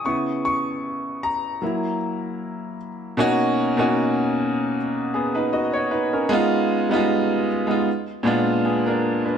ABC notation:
X:1
M:4/4
L:1/16
Q:"Swing 16ths" 1/4=77
K:B
V:1 name="Grand piano"
c'2 c'4 a4 z6 | z8 z2 [B,G] [DB] [Fd] c [DB] [CA]- | [CA] z8 z3 [B,G] [=DA]2 [DB] |]
V:2 name="Grand piano"
[C,B,E]8 [F,A,E]6 z2 | [B,,A,CDF]2 z [B,,A,CDF]4- [B,,A,CDF] z8 | [_A,_C_E=F]2 z [=G,A,CEF]3 z [A,CEF] z2 [^A,,^G,B,=D^E]3 z3 |]